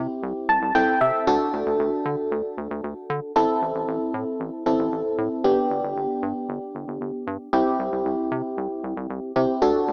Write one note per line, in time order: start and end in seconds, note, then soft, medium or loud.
0.00 0.72 C4 medium
0.00 0.72 E4 medium
0.00 0.72 G4 medium
0.23 0.33 C2 loud
0.49 0.59 C2 medium
0.49 0.73 A5 medium
0.62 0.72 C2 loud
0.75 0.85 C2 loud
0.75 1.27 C4 medium
0.75 1.27 E4 medium
0.75 1.26 A4 medium
0.75 0.99 G5 medium
1.01 1.11 C3 loud
1.01 1.25 E5 medium
1.27 1.38 D2 loud
1.27 3.32 D4 medium
1.27 3.32 F#4 medium
1.27 3.32 A4 medium
1.53 1.64 D2 loud
1.66 1.77 D2 loud
1.79 1.90 D2 loud
2.05 2.16 D3 loud
2.32 2.42 D2 loud
2.58 2.68 D2 loud
2.71 2.81 D2 loud
2.84 2.94 D2 loud
3.10 3.20 D3 loud
3.36 3.46 A1 loud
3.36 4.64 C4 medium
3.36 4.64 E4 medium
3.36 4.64 A4 medium
3.62 3.72 A1 loud
3.75 3.85 A1 medium
3.88 3.98 A1 loud
4.14 4.24 A2 medium
4.40 4.50 A1 loud
4.66 4.77 A1 loud
4.66 5.44 C4 medium
4.66 5.44 E4 soft
4.66 5.44 A4 medium
4.79 4.90 A1 loud
4.92 5.03 A1 medium
5.18 5.29 A2 medium
5.44 5.55 G1 loud
5.44 7.49 B3 medium
5.44 7.49 D4 medium
5.44 7.49 G4 medium
5.70 5.81 G1 loud
5.83 5.94 G1 loud
5.97 6.07 G1 loud
6.23 6.33 G2 medium
6.49 6.59 G1 loud
6.75 6.85 G1 loud
6.88 6.98 G1 loud
7.01 7.11 G1 loud
7.27 7.38 G2 loud
7.53 7.64 C2 loud
7.53 9.32 C4 medium
7.53 9.32 E4 medium
7.53 9.32 G4 medium
7.79 7.90 C2 loud
7.92 8.03 C2 medium
8.05 8.16 C2 loud
8.32 8.42 C3 medium
8.57 8.68 C2 loud
8.84 8.94 C2 medium
8.97 9.07 C2 loud
9.10 9.20 C2 loud
9.36 9.46 C3 loud
9.36 9.62 C4 medium
9.36 9.62 E4 medium
9.36 9.62 G4 medium
9.62 9.72 D2 loud
9.62 9.93 D4 medium
9.62 9.93 F#4 medium
9.62 9.93 A4 medium
9.88 9.93 D2 loud